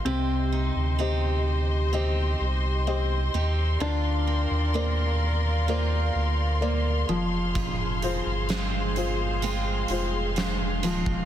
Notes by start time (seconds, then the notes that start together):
Already playing: A#3 C4
0.05 C2 C3 C4 G4 C5 D#5 C6
0.52 D#4
0.76 D2
0.99 C4 D#4 G4 C5 D#5
1.93 C4 D#4 G4 C5 D#5
2.40 C2
2.87 C4 G4 C5 D#5
3.34 D#2 C4 D#4 G4
3.80 D2 D3 D4 F4 A#4 D5 F5
4.27 C4
4.51 D#2
4.74 A#3 C4 F4 A#4 C5 D5
5.68 A#3 C4 F4 A#4 C5 D5
6.15 D2
6.61 A#3 A#4 C5 D5
7.08 F1 F2 F3 G#4 C5
7.55 F2 F4, kick, closed hi-hat
8.02 C4 F4 G#4 C5, closed hi-hat
8.26 G1
8.49 G#3 C4 F4, snare, closed hi-hat
8.96 F4 G#4 C5, closed hi-hat
9.42 G#3 C4 F4, closed hi-hat
9.88 F1 F4 G#4 C5, closed hi-hat
10.36 G#3, snare, closed hi-hat
10.82 D1 F3 G#3 C4 F4, snare, closed hi-hat
11.06 kick